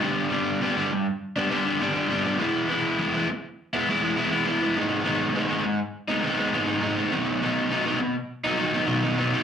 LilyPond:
\new Staff \with { instrumentName = "Overdriven electric guitar" } { \time 4/4 \key e \major \tempo 4 = 102 <g, d g b d'>8 <d g b d'>8 <g, d g b d'>16 <g b d'>8. r16 <g b d'>16 <d g b d'>16 <g b d'>16 <g, d g b d'>16 <g b d'>16 <d g b d'>16 <g b d'>16 | <e gis b e'>8 <e gis b e'>8 <e gis b e'>16 <gis b e'>8. r16 <gis b e'>16 <e gis b e'>16 <gis b e'>16 <e gis b e'>16 <gis b e'>16 <e gis b e'>16 <gis b e'>16 | <gis, dis gis b dis'>8 <dis gis b dis'>8 <gis, dis gis b dis'>16 <gis b dis'>8. r16 <gis b dis'>16 <dis gis b dis'>16 <gis b dis'>16 <gis, dis gis b dis'>16 <gis b dis'>16 <dis gis b dis'>16 <gis b dis'>16 | <b, dis fis b dis'>8 <dis fis b dis'>8 <b, dis fis b dis'>16 <fis b dis'>8. r16 <fis b dis'>16 <dis fis b dis'>16 <fis b dis'>16 <b, dis fis b dis'>16 <fis b dis'>16 <dis fis b dis'>16 <fis b dis'>16 | }